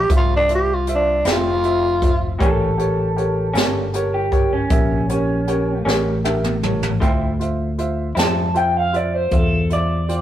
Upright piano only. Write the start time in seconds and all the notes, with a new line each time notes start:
0.10 F4 C5 E5
0.49 F4 C5 E5
0.88 F4 C5 E5
1.27 F4 C5 E5
1.65 F4 C5 E5
2.02 F4 C5 E5
2.39 G4 A#4 C#5
2.78 G4 A#4 C#5
3.16 G4 A#4 C#5
3.56 G4 A#4 C#5
3.94 G4 A#4 C#5
4.32 G4 A#4 C#5
4.71 G4 A#4 E5
5.09 G4 A#4 C#5
5.48 G4 A#4 C#5
5.86 G4 A#4 C#5
6.24 G4 A#4 E5
6.63 G4 A#4 C#5 A5
7.01 F4 C5 E5
7.40 F4 C5 E5
7.78 F4 C5 E5
8.17 F4 C5 E5
8.55 F4 C5 E5
8.93 F4 C5 E5
9.32 F4 C5 E5
9.70 F4 C5 E5
10.09 F4 C5 G5